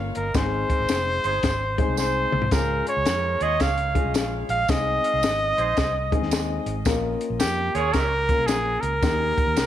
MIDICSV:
0, 0, Header, 1, 6, 480
1, 0, Start_track
1, 0, Key_signature, -4, "major"
1, 0, Tempo, 542495
1, 310, Time_signature, 4, 2, 24, 8
1, 8550, End_track
2, 0, Start_track
2, 0, Title_t, "Trumpet"
2, 0, Program_c, 0, 56
2, 147, Note_on_c, 0, 70, 72
2, 315, Note_on_c, 0, 72, 94
2, 328, Note_off_c, 0, 70, 0
2, 1752, Note_off_c, 0, 72, 0
2, 1759, Note_on_c, 0, 72, 87
2, 2239, Note_on_c, 0, 70, 80
2, 2253, Note_off_c, 0, 72, 0
2, 2543, Note_off_c, 0, 70, 0
2, 2555, Note_on_c, 0, 73, 91
2, 3034, Note_on_c, 0, 75, 91
2, 3047, Note_off_c, 0, 73, 0
2, 3203, Note_on_c, 0, 77, 95
2, 3216, Note_off_c, 0, 75, 0
2, 3676, Note_off_c, 0, 77, 0
2, 3984, Note_on_c, 0, 77, 99
2, 4158, Note_on_c, 0, 75, 108
2, 4172, Note_off_c, 0, 77, 0
2, 5901, Note_off_c, 0, 75, 0
2, 6548, Note_on_c, 0, 67, 94
2, 6862, Note_on_c, 0, 68, 88
2, 6875, Note_off_c, 0, 67, 0
2, 7020, Note_on_c, 0, 70, 105
2, 7033, Note_off_c, 0, 68, 0
2, 7490, Note_on_c, 0, 68, 89
2, 7503, Note_off_c, 0, 70, 0
2, 7796, Note_on_c, 0, 70, 99
2, 7810, Note_off_c, 0, 68, 0
2, 8550, Note_off_c, 0, 70, 0
2, 8550, End_track
3, 0, Start_track
3, 0, Title_t, "Horn section"
3, 0, Program_c, 1, 61
3, 1099, Note_on_c, 1, 63, 81
3, 1099, Note_on_c, 1, 68, 75
3, 1099, Note_on_c, 1, 72, 88
3, 1408, Note_off_c, 1, 63, 0
3, 1408, Note_off_c, 1, 68, 0
3, 1408, Note_off_c, 1, 72, 0
3, 3016, Note_on_c, 1, 68, 80
3, 3018, Note_on_c, 1, 65, 81
3, 3019, Note_on_c, 1, 73, 85
3, 3326, Note_off_c, 1, 68, 0
3, 3327, Note_off_c, 1, 65, 0
3, 3328, Note_off_c, 1, 73, 0
3, 4931, Note_on_c, 1, 63, 78
3, 4934, Note_on_c, 1, 68, 80
3, 4935, Note_on_c, 1, 72, 85
3, 5243, Note_off_c, 1, 63, 0
3, 5245, Note_off_c, 1, 68, 0
3, 5245, Note_off_c, 1, 72, 0
3, 6860, Note_on_c, 1, 73, 96
3, 6861, Note_on_c, 1, 65, 87
3, 6862, Note_on_c, 1, 70, 87
3, 7168, Note_off_c, 1, 65, 0
3, 7168, Note_off_c, 1, 70, 0
3, 7168, Note_off_c, 1, 73, 0
3, 8550, End_track
4, 0, Start_track
4, 0, Title_t, "Upright piano"
4, 0, Program_c, 2, 0
4, 0, Note_on_c, 2, 58, 66
4, 0, Note_on_c, 2, 61, 56
4, 0, Note_on_c, 2, 65, 58
4, 0, Note_on_c, 2, 73, 69
4, 197, Note_off_c, 2, 58, 0
4, 200, Note_off_c, 2, 61, 0
4, 201, Note_off_c, 2, 65, 0
4, 203, Note_off_c, 2, 73, 0
4, 307, Note_on_c, 2, 56, 68
4, 310, Note_on_c, 2, 60, 62
4, 313, Note_on_c, 2, 63, 60
4, 319, Note_on_c, 2, 68, 73
4, 1126, Note_off_c, 2, 56, 0
4, 1128, Note_off_c, 2, 60, 0
4, 1129, Note_off_c, 2, 63, 0
4, 1132, Note_off_c, 2, 68, 0
4, 1575, Note_on_c, 2, 56, 76
4, 1580, Note_on_c, 2, 60, 68
4, 1582, Note_on_c, 2, 63, 69
4, 1588, Note_on_c, 2, 68, 78
4, 2122, Note_off_c, 2, 56, 0
4, 2124, Note_off_c, 2, 60, 0
4, 2125, Note_off_c, 2, 63, 0
4, 2128, Note_off_c, 2, 68, 0
4, 2232, Note_on_c, 2, 56, 61
4, 2234, Note_on_c, 2, 61, 60
4, 2237, Note_on_c, 2, 65, 63
4, 2242, Note_on_c, 2, 68, 75
4, 3048, Note_off_c, 2, 56, 0
4, 3049, Note_off_c, 2, 61, 0
4, 3051, Note_off_c, 2, 65, 0
4, 3053, Note_off_c, 2, 68, 0
4, 3492, Note_on_c, 2, 56, 64
4, 3496, Note_on_c, 2, 61, 55
4, 3500, Note_on_c, 2, 65, 58
4, 3503, Note_on_c, 2, 68, 71
4, 4040, Note_off_c, 2, 56, 0
4, 4042, Note_off_c, 2, 61, 0
4, 4044, Note_off_c, 2, 65, 0
4, 4045, Note_off_c, 2, 68, 0
4, 4151, Note_on_c, 2, 56, 68
4, 4155, Note_on_c, 2, 60, 60
4, 4157, Note_on_c, 2, 63, 64
4, 4160, Note_on_c, 2, 68, 74
4, 4968, Note_off_c, 2, 56, 0
4, 4969, Note_off_c, 2, 60, 0
4, 4971, Note_off_c, 2, 63, 0
4, 4972, Note_off_c, 2, 68, 0
4, 5416, Note_on_c, 2, 56, 80
4, 5421, Note_on_c, 2, 60, 66
4, 5424, Note_on_c, 2, 63, 64
4, 5426, Note_on_c, 2, 68, 79
4, 5961, Note_off_c, 2, 56, 0
4, 5964, Note_off_c, 2, 60, 0
4, 5965, Note_off_c, 2, 63, 0
4, 5966, Note_off_c, 2, 68, 0
4, 6062, Note_on_c, 2, 58, 81
4, 6067, Note_on_c, 2, 61, 72
4, 6071, Note_on_c, 2, 70, 95
4, 6072, Note_on_c, 2, 65, 75
4, 6883, Note_off_c, 2, 58, 0
4, 6885, Note_off_c, 2, 61, 0
4, 6887, Note_off_c, 2, 70, 0
4, 6888, Note_off_c, 2, 65, 0
4, 7330, Note_on_c, 2, 58, 61
4, 7332, Note_on_c, 2, 61, 60
4, 7336, Note_on_c, 2, 65, 57
4, 7337, Note_on_c, 2, 70, 73
4, 7877, Note_off_c, 2, 58, 0
4, 7878, Note_off_c, 2, 61, 0
4, 7880, Note_off_c, 2, 65, 0
4, 7881, Note_off_c, 2, 70, 0
4, 7986, Note_on_c, 2, 58, 73
4, 7990, Note_on_c, 2, 63, 62
4, 7994, Note_on_c, 2, 67, 64
4, 7996, Note_on_c, 2, 70, 72
4, 8550, Note_off_c, 2, 58, 0
4, 8550, Note_off_c, 2, 63, 0
4, 8550, Note_off_c, 2, 67, 0
4, 8550, Note_off_c, 2, 70, 0
4, 8550, End_track
5, 0, Start_track
5, 0, Title_t, "Fingered electric bass"
5, 0, Program_c, 3, 33
5, 146, Note_on_c, 3, 31, 78
5, 283, Note_off_c, 3, 31, 0
5, 306, Note_on_c, 3, 32, 95
5, 559, Note_off_c, 3, 32, 0
5, 707, Note_on_c, 3, 32, 80
5, 775, Note_off_c, 3, 32, 0
5, 792, Note_on_c, 3, 29, 74
5, 1042, Note_off_c, 3, 29, 0
5, 1103, Note_on_c, 3, 31, 81
5, 1241, Note_off_c, 3, 31, 0
5, 1269, Note_on_c, 3, 32, 72
5, 1590, Note_off_c, 3, 32, 0
5, 1665, Note_on_c, 3, 36, 65
5, 1986, Note_off_c, 3, 36, 0
5, 2060, Note_on_c, 3, 36, 80
5, 2199, Note_off_c, 3, 36, 0
5, 2230, Note_on_c, 3, 37, 103
5, 2481, Note_off_c, 3, 37, 0
5, 2625, Note_on_c, 3, 37, 82
5, 2694, Note_off_c, 3, 37, 0
5, 2708, Note_on_c, 3, 41, 78
5, 2960, Note_off_c, 3, 41, 0
5, 3018, Note_on_c, 3, 39, 85
5, 3158, Note_off_c, 3, 39, 0
5, 3190, Note_on_c, 3, 37, 89
5, 3511, Note_off_c, 3, 37, 0
5, 3582, Note_on_c, 3, 36, 71
5, 3667, Note_off_c, 3, 36, 0
5, 3667, Note_on_c, 3, 34, 85
5, 3919, Note_off_c, 3, 34, 0
5, 3972, Note_on_c, 3, 34, 77
5, 4114, Note_off_c, 3, 34, 0
5, 4149, Note_on_c, 3, 36, 92
5, 4400, Note_off_c, 3, 36, 0
5, 4545, Note_on_c, 3, 36, 90
5, 4614, Note_off_c, 3, 36, 0
5, 4626, Note_on_c, 3, 32, 90
5, 4879, Note_off_c, 3, 32, 0
5, 4936, Note_on_c, 3, 34, 82
5, 5076, Note_off_c, 3, 34, 0
5, 5111, Note_on_c, 3, 36, 88
5, 5432, Note_off_c, 3, 36, 0
5, 5503, Note_on_c, 3, 39, 68
5, 5824, Note_off_c, 3, 39, 0
5, 5893, Note_on_c, 3, 32, 86
5, 6034, Note_off_c, 3, 32, 0
5, 6068, Note_on_c, 3, 34, 95
5, 6320, Note_off_c, 3, 34, 0
5, 6459, Note_on_c, 3, 34, 98
5, 6546, Note_on_c, 3, 41, 83
5, 6559, Note_off_c, 3, 34, 0
5, 6798, Note_off_c, 3, 41, 0
5, 6855, Note_on_c, 3, 39, 80
5, 6995, Note_off_c, 3, 39, 0
5, 7028, Note_on_c, 3, 37, 88
5, 7349, Note_off_c, 3, 37, 0
5, 7415, Note_on_c, 3, 36, 77
5, 7501, Note_off_c, 3, 36, 0
5, 7501, Note_on_c, 3, 34, 88
5, 7755, Note_off_c, 3, 34, 0
5, 7809, Note_on_c, 3, 37, 82
5, 7952, Note_off_c, 3, 37, 0
5, 7988, Note_on_c, 3, 39, 103
5, 8239, Note_off_c, 3, 39, 0
5, 8377, Note_on_c, 3, 39, 85
5, 8448, Note_off_c, 3, 39, 0
5, 8467, Note_on_c, 3, 36, 80
5, 8550, Note_off_c, 3, 36, 0
5, 8550, End_track
6, 0, Start_track
6, 0, Title_t, "Drums"
6, 133, Note_on_c, 9, 42, 62
6, 222, Note_off_c, 9, 42, 0
6, 304, Note_on_c, 9, 54, 76
6, 306, Note_on_c, 9, 36, 105
6, 306, Note_on_c, 9, 42, 82
6, 313, Note_on_c, 9, 38, 109
6, 392, Note_off_c, 9, 54, 0
6, 394, Note_off_c, 9, 42, 0
6, 395, Note_off_c, 9, 36, 0
6, 402, Note_off_c, 9, 38, 0
6, 617, Note_on_c, 9, 36, 78
6, 618, Note_on_c, 9, 42, 55
6, 705, Note_off_c, 9, 36, 0
6, 706, Note_off_c, 9, 42, 0
6, 783, Note_on_c, 9, 54, 92
6, 785, Note_on_c, 9, 42, 79
6, 794, Note_on_c, 9, 38, 102
6, 872, Note_off_c, 9, 54, 0
6, 874, Note_off_c, 9, 42, 0
6, 882, Note_off_c, 9, 38, 0
6, 1097, Note_on_c, 9, 42, 56
6, 1186, Note_off_c, 9, 42, 0
6, 1265, Note_on_c, 9, 42, 85
6, 1270, Note_on_c, 9, 36, 77
6, 1273, Note_on_c, 9, 38, 102
6, 1273, Note_on_c, 9, 54, 68
6, 1353, Note_off_c, 9, 42, 0
6, 1358, Note_off_c, 9, 36, 0
6, 1362, Note_off_c, 9, 38, 0
6, 1362, Note_off_c, 9, 54, 0
6, 1577, Note_on_c, 9, 36, 91
6, 1578, Note_on_c, 9, 42, 59
6, 1666, Note_off_c, 9, 36, 0
6, 1666, Note_off_c, 9, 42, 0
6, 1745, Note_on_c, 9, 54, 91
6, 1754, Note_on_c, 9, 38, 55
6, 1834, Note_off_c, 9, 54, 0
6, 1842, Note_off_c, 9, 38, 0
6, 2056, Note_on_c, 9, 45, 77
6, 2139, Note_on_c, 9, 43, 73
6, 2145, Note_off_c, 9, 45, 0
6, 2224, Note_on_c, 9, 42, 84
6, 2227, Note_off_c, 9, 43, 0
6, 2228, Note_on_c, 9, 36, 93
6, 2232, Note_on_c, 9, 38, 104
6, 2232, Note_on_c, 9, 54, 84
6, 2313, Note_off_c, 9, 42, 0
6, 2316, Note_off_c, 9, 36, 0
6, 2320, Note_off_c, 9, 38, 0
6, 2320, Note_off_c, 9, 54, 0
6, 2537, Note_on_c, 9, 42, 54
6, 2625, Note_off_c, 9, 42, 0
6, 2703, Note_on_c, 9, 42, 82
6, 2711, Note_on_c, 9, 38, 109
6, 2713, Note_on_c, 9, 54, 94
6, 2792, Note_off_c, 9, 42, 0
6, 2800, Note_off_c, 9, 38, 0
6, 2801, Note_off_c, 9, 54, 0
6, 3013, Note_on_c, 9, 42, 55
6, 3101, Note_off_c, 9, 42, 0
6, 3184, Note_on_c, 9, 42, 84
6, 3190, Note_on_c, 9, 36, 80
6, 3192, Note_on_c, 9, 38, 104
6, 3194, Note_on_c, 9, 54, 64
6, 3273, Note_off_c, 9, 42, 0
6, 3279, Note_off_c, 9, 36, 0
6, 3281, Note_off_c, 9, 38, 0
6, 3282, Note_off_c, 9, 54, 0
6, 3340, Note_on_c, 9, 42, 50
6, 3429, Note_off_c, 9, 42, 0
6, 3498, Note_on_c, 9, 36, 85
6, 3499, Note_on_c, 9, 42, 64
6, 3586, Note_off_c, 9, 36, 0
6, 3587, Note_off_c, 9, 42, 0
6, 3666, Note_on_c, 9, 42, 81
6, 3670, Note_on_c, 9, 54, 86
6, 3678, Note_on_c, 9, 38, 102
6, 3754, Note_off_c, 9, 42, 0
6, 3759, Note_off_c, 9, 54, 0
6, 3767, Note_off_c, 9, 38, 0
6, 3974, Note_on_c, 9, 42, 60
6, 4062, Note_off_c, 9, 42, 0
6, 4145, Note_on_c, 9, 54, 80
6, 4149, Note_on_c, 9, 36, 104
6, 4149, Note_on_c, 9, 42, 87
6, 4156, Note_on_c, 9, 38, 108
6, 4233, Note_off_c, 9, 54, 0
6, 4237, Note_off_c, 9, 42, 0
6, 4238, Note_off_c, 9, 36, 0
6, 4245, Note_off_c, 9, 38, 0
6, 4461, Note_on_c, 9, 42, 59
6, 4549, Note_off_c, 9, 42, 0
6, 4625, Note_on_c, 9, 54, 93
6, 4628, Note_on_c, 9, 42, 81
6, 4636, Note_on_c, 9, 38, 109
6, 4714, Note_off_c, 9, 54, 0
6, 4716, Note_off_c, 9, 42, 0
6, 4724, Note_off_c, 9, 38, 0
6, 4937, Note_on_c, 9, 42, 52
6, 5025, Note_off_c, 9, 42, 0
6, 5103, Note_on_c, 9, 42, 89
6, 5109, Note_on_c, 9, 54, 69
6, 5110, Note_on_c, 9, 36, 77
6, 5112, Note_on_c, 9, 38, 110
6, 5192, Note_off_c, 9, 42, 0
6, 5198, Note_off_c, 9, 54, 0
6, 5199, Note_off_c, 9, 36, 0
6, 5200, Note_off_c, 9, 38, 0
6, 5417, Note_on_c, 9, 36, 89
6, 5419, Note_on_c, 9, 42, 67
6, 5506, Note_off_c, 9, 36, 0
6, 5507, Note_off_c, 9, 42, 0
6, 5509, Note_on_c, 9, 38, 31
6, 5586, Note_on_c, 9, 54, 88
6, 5587, Note_on_c, 9, 42, 95
6, 5597, Note_off_c, 9, 38, 0
6, 5600, Note_on_c, 9, 38, 108
6, 5675, Note_off_c, 9, 54, 0
6, 5676, Note_off_c, 9, 42, 0
6, 5688, Note_off_c, 9, 38, 0
6, 5896, Note_on_c, 9, 42, 63
6, 5984, Note_off_c, 9, 42, 0
6, 6063, Note_on_c, 9, 54, 80
6, 6068, Note_on_c, 9, 36, 99
6, 6068, Note_on_c, 9, 42, 89
6, 6075, Note_on_c, 9, 38, 104
6, 6151, Note_off_c, 9, 54, 0
6, 6156, Note_off_c, 9, 42, 0
6, 6157, Note_off_c, 9, 36, 0
6, 6164, Note_off_c, 9, 38, 0
6, 6377, Note_on_c, 9, 42, 58
6, 6466, Note_off_c, 9, 42, 0
6, 6545, Note_on_c, 9, 42, 79
6, 6546, Note_on_c, 9, 54, 95
6, 6553, Note_on_c, 9, 38, 101
6, 6633, Note_off_c, 9, 42, 0
6, 6635, Note_off_c, 9, 54, 0
6, 6642, Note_off_c, 9, 38, 0
6, 6856, Note_on_c, 9, 42, 58
6, 6944, Note_off_c, 9, 42, 0
6, 7021, Note_on_c, 9, 42, 83
6, 7027, Note_on_c, 9, 54, 65
6, 7028, Note_on_c, 9, 36, 81
6, 7030, Note_on_c, 9, 38, 103
6, 7110, Note_off_c, 9, 42, 0
6, 7115, Note_off_c, 9, 54, 0
6, 7116, Note_off_c, 9, 36, 0
6, 7118, Note_off_c, 9, 38, 0
6, 7334, Note_on_c, 9, 42, 68
6, 7335, Note_on_c, 9, 36, 88
6, 7423, Note_off_c, 9, 36, 0
6, 7423, Note_off_c, 9, 42, 0
6, 7500, Note_on_c, 9, 42, 92
6, 7504, Note_on_c, 9, 54, 90
6, 7513, Note_on_c, 9, 38, 108
6, 7589, Note_off_c, 9, 42, 0
6, 7593, Note_off_c, 9, 54, 0
6, 7601, Note_off_c, 9, 38, 0
6, 7810, Note_on_c, 9, 42, 58
6, 7898, Note_off_c, 9, 42, 0
6, 7985, Note_on_c, 9, 42, 86
6, 7986, Note_on_c, 9, 36, 100
6, 7986, Note_on_c, 9, 54, 73
6, 7993, Note_on_c, 9, 38, 100
6, 8074, Note_off_c, 9, 36, 0
6, 8074, Note_off_c, 9, 42, 0
6, 8075, Note_off_c, 9, 54, 0
6, 8081, Note_off_c, 9, 38, 0
6, 8296, Note_on_c, 9, 36, 84
6, 8296, Note_on_c, 9, 42, 54
6, 8384, Note_off_c, 9, 36, 0
6, 8385, Note_off_c, 9, 42, 0
6, 8463, Note_on_c, 9, 42, 85
6, 8464, Note_on_c, 9, 54, 95
6, 8472, Note_on_c, 9, 38, 99
6, 8550, Note_off_c, 9, 38, 0
6, 8550, Note_off_c, 9, 42, 0
6, 8550, Note_off_c, 9, 54, 0
6, 8550, End_track
0, 0, End_of_file